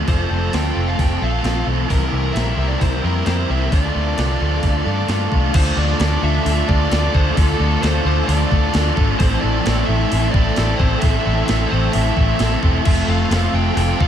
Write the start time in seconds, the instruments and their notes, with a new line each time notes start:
Already playing: clean electric guitar E3 C4, analog synth pad F4 A4 C6 E6
0.07 picked electric bass F1, overdriven electric guitar F3 A3 C4 F4 A4, lead electric guitar C5, kick, open hi-hat
0.30 picked electric bass F1, clean electric guitar C4, overdriven electric guitar C4 F4 A4
0.52 picked electric bass D2, overdriven electric guitar A3 C4 F4 A4, clean electric guitar A3, lead electric guitar G5, snare, open hi-hat
0.75 picked electric bass F1, overdriven electric guitar C4 F4 A4
0.88 lead electric guitar F5
0.99 picked electric bass F1, lead electric guitar G5, kick, open hi-hat
1.20 picked electric bass A#1, overdriven electric guitar C4 F4 A4, lead electric guitar F5
1.43 picked electric bass A#1, overdriven electric guitar A3 C4 F4 A4, clean electric guitar C4, snare, open hi-hat
1.67 picked electric bass B1, clean electric guitar E3, overdriven electric guitar C4 F4 A4
1.88 picked electric bass C2, overdriven electric guitar C3 E3 G3 C4 E4 A#4, clean electric guitar E3, analog synth pad A#4 G5 C6 E6, lead electric guitar A#4, kick, open hi-hat
2.12 picked electric bass C2, overdriven electric guitar G3 C4 E4 A#4, clean electric guitar G4
2.33 picked electric bass A#1, overdriven electric guitar G3 C4 E4, clean electric guitar C4, lead electric guitar E5, open hi-hat
2.37 overdriven electric guitar A#4, snare
2.57 picked electric bass C2, overdriven electric guitar G3 C4 E4 A#4, clean electric guitar A#3
2.68 lead electric guitar D5
2.80 picked electric bass C2, clean electric guitar E3, lead electric guitar C5, kick, open hi-hat
3.03 picked electric bass F2, overdriven electric guitar G3 C4 E4 A#4, clean electric guitar A#3, lead electric guitar A#4
3.26 picked electric bass F2, overdriven electric guitar G3 C4 E4 A#4, clean electric guitar G4, lead electric guitar C5, snare, open hi-hat
3.48 picked electric bass C2, overdriven electric guitar G3 C4 E4 A#4, clean electric guitar A#3, lead electric guitar E5
3.72 picked electric bass D2, overdriven electric guitar D3 A3 D4 F4 A4, clean electric guitar A3, analog synth pad A4 F5 D6, lead electric guitar D5, kick, open hi-hat
3.95 picked electric bass D2, overdriven electric guitar D4 F4 A4, clean electric guitar F4
4.17 picked electric bass C2, overdriven electric guitar A3 D4 F4 A4, clean electric guitar C4, snare, open hi-hat
4.40 picked electric bass D2, clean electric guitar A3, overdriven electric guitar D4 F4 A4
4.63 picked electric bass D2, clean electric guitar A3, kick, open hi-hat
4.86 picked electric bass G2, clean electric guitar A3, overdriven electric guitar D4 F4 A4
5.08 picked electric bass G2, overdriven electric guitar A3 D4 F4 A4, clean electric guitar F4, snare, open hi-hat
5.31 picked electric bass C2, clean electric guitar A3, overdriven electric guitar D4 F4 A4, kick
5.54 picked electric bass D2, overdriven electric guitar D3 A3 D4 F4 A4, analog synth pad F4 A4 C6 D6, lead electric guitar C5, kick, open hi-hat, crash
5.77 picked electric bass D2, overdriven electric guitar D4 F4 A4, lead electric guitar D5
5.99 picked electric bass D2, overdriven electric guitar A3 D4 F4 A4, snare, open hi-hat
6.22 picked electric bass D2, overdriven electric guitar D4 F4 A4, lead electric guitar E5
6.45 picked electric bass D2, overdriven electric guitar D3 A3 D4 F4 A4, open hi-hat
6.68 picked electric bass D2, overdriven electric guitar D4 F4 A4, lead electric guitar D5, kick
6.90 picked electric bass D2, overdriven electric guitar A3 D4 F4 A4, snare, open hi-hat
7.14 picked electric bass D2, overdriven electric guitar D4 F4 A4, lead electric guitar C5, kick
7.36 picked electric bass D2, overdriven electric guitar D3 A3 D4 F4 A4, lead electric guitar A4, analog synth pad E6, kick, open hi-hat
7.59 picked electric bass D2, overdriven electric guitar D4 F4 A4
7.82 picked electric bass D2, overdriven electric guitar A3 D4 F4 A4, lead electric guitar C5, snare, open hi-hat
8.05 picked electric bass D2, overdriven electric guitar D4 F4 A4, lead electric guitar C5
8.27 picked electric bass D2, overdriven electric guitar D3 A3 D4 F4 A4, lead electric guitar D5, open hi-hat
8.51 picked electric bass D2, overdriven electric guitar D4 F4 A4, kick
8.73 picked electric bass D2, overdriven electric guitar A3 D4 F4 A4, snare, open hi-hat
8.96 picked electric bass G#1, overdriven electric guitar D4 F4 A4, kick
9.19 picked electric bass A1, overdriven electric guitar A2 E3 A3 C4 E4 A4, lead electric guitar C5, analog synth pad G5 C6, kick, open hi-hat
9.40 picked electric bass A1, overdriven electric guitar E4 A4, lead electric guitar D5
9.45 overdriven electric guitar A3 C4
9.66 picked electric bass A1, overdriven electric guitar A3 C4 E4 A4, snare, open hi-hat
9.86 picked electric bass A1, overdriven electric guitar C4 E4 A4, lead electric guitar E5
9.91 overdriven electric guitar A3
10.11 picked electric bass A1, overdriven electric guitar A2 E3 A3 C4 E4 A4, open hi-hat
10.31 picked electric bass A1, overdriven electric guitar E4 A4, lead electric guitar D5, kick
10.36 overdriven electric guitar A3 C4
10.56 picked electric bass A1, overdriven electric guitar A3 C4 E4 A4, snare, open hi-hat
10.77 picked electric bass A1, overdriven electric guitar E4 A4, lead electric guitar C5, kick
10.81 overdriven electric guitar A3 C4
11.00 picked electric bass A1, overdriven electric guitar A2 E3 A3 C4 E4, lead electric guitar E5, kick, open hi-hat
11.04 overdriven electric guitar A4
11.26 picked electric bass A1, overdriven electric guitar A3 C4 E4 A4
11.46 picked electric bass A1, overdriven electric guitar A3 C4 E4, lead electric guitar E5, snare, open hi-hat
11.50 overdriven electric guitar A4
11.69 picked electric bass A1, overdriven electric guitar E4 A4, lead electric guitar C5
11.73 overdriven electric guitar A3 C4
11.92 picked electric bass A1, overdriven electric guitar A2 E3 A3 C4, lead electric guitar E5, open hi-hat
11.96 overdriven electric guitar E4 A4
12.17 picked electric bass A1, overdriven electric guitar A3 C4 E4 A4, kick
12.39 picked electric bass A1, overdriven electric guitar A3 C4 E4 A4, snare, open hi-hat
12.62 picked electric bass E1, overdriven electric guitar A3 C4 E4 A4, kick
12.85 picked electric bass F1, overdriven electric guitar F3 A3 C4 F4 A4, lead electric guitar E5, analog synth pad F5, kick, crash
13.08 picked electric bass F1, clean electric guitar A3, overdriven electric guitar C4 F4 A4, lead electric guitar F5
13.30 picked electric bass F1, overdriven electric guitar A3 C4 F4 A4, snare, open hi-hat
13.53 picked electric bass F1, overdriven electric guitar C4 F4 A4, lead electric guitar G5
13.77 picked electric bass F1, overdriven electric guitar F3 A3 C4 F4 A4, lead electric guitar G5, open hi-hat
14.00 picked electric bass F1, overdriven electric guitar C4 F4 A4, lead electric guitar F5, kick